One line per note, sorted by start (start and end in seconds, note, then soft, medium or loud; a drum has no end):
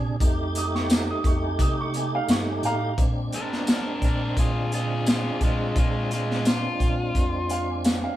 0.00 0.16 A#2 medium
0.00 0.16 C3 medium
0.00 0.16 D4 medium
0.00 0.16 G#4 medium
0.20 1.10 F2 medium
0.20 2.94 A3 medium
0.20 2.94 D#4 medium
0.20 2.94 G4 medium
0.20 kick loud
0.20 closed hi-hat medium
0.55 0.73 D#6 loud
0.55 closed hi-hat medium
0.75 0.89 C#6 medium
0.75 snare soft
0.90 snare loud
0.90 closed hi-hat medium
0.90 tambourine loud
1.10 1.24 D#6 loud
1.24 1.54 F2 medium
1.24 1.43 C#6 medium
1.24 kick medium
1.24 closed hi-hat medium
1.45 1.59 G#5 medium
1.59 2.19 C3 loud
1.59 1.77 D#6 medium
1.59 kick medium
1.59 closed hi-hat medium
1.81 1.94 C#6 medium
1.94 2.12 G#5 loud
1.94 closed hi-hat medium
2.15 2.29 F5 loud
2.28 2.60 G2 loud
2.28 2.47 C#6 medium
2.28 snare loud
2.28 closed hi-hat medium
2.28 tambourine loud
2.49 2.63 G#5 medium
2.62 2.94 A2 medium
2.62 2.97 F5 loud
2.62 2.98 A#5 loud
2.62 closed hi-hat medium
2.98 3.28 A#2 medium
2.98 8.16 G#3 medium
2.98 8.16 C4 medium
2.98 8.16 D4 medium
2.98 kick loud
2.98 closed hi-hat medium
3.33 3.68 D4 medium
3.33 3.68 A#4 medium
3.33 closed hi-hat medium
3.52 snare soft
3.67 4.01 D4 medium
3.67 4.03 A#4 medium
3.67 snare loud
3.67 closed hi-hat medium
3.67 tambourine loud
4.02 4.32 A#2 medium
4.02 4.36 D4 medium
4.02 4.37 A#4 medium
4.02 kick medium
4.02 closed hi-hat medium
4.37 5.27 A#2 loud
4.37 4.70 F4 medium
4.37 4.72 G#4 medium
4.37 kick medium
4.37 closed hi-hat medium
4.72 5.05 F4 medium
4.72 5.07 G#4 medium
4.72 closed hi-hat medium
5.06 5.40 F4 medium
5.06 5.41 G#4 medium
5.06 snare loud
5.06 closed hi-hat medium
5.06 tambourine loud
5.41 5.71 A#2 medium
5.41 5.75 G#3 medium
5.41 5.76 F4 medium
5.41 kick medium
5.41 closed hi-hat medium
5.76 6.66 A#2 medium
5.76 6.09 G#3 medium
5.76 6.11 F4 medium
5.76 kick loud
5.76 closed hi-hat medium
6.11 6.44 G#3 medium
6.11 6.46 F4 medium
6.11 closed hi-hat medium
6.31 snare soft
6.45 7.81 F4 medium
6.45 snare loud
6.45 closed hi-hat medium
6.45 tambourine medium
6.80 7.10 A#2 medium
6.80 kick medium
6.80 closed hi-hat medium
7.15 8.05 F2 medium
7.15 kick medium
7.15 closed hi-hat medium
7.46 7.50 E5 medium
7.46 closed hi-hat medium
7.51 7.67 F5 loud
7.69 7.84 G#5 medium
7.84 8.02 F5 medium
7.84 snare loud
7.84 closed hi-hat medium
7.84 tambourine loud
8.00 8.03 E5 medium
8.00 8.16 F5 medium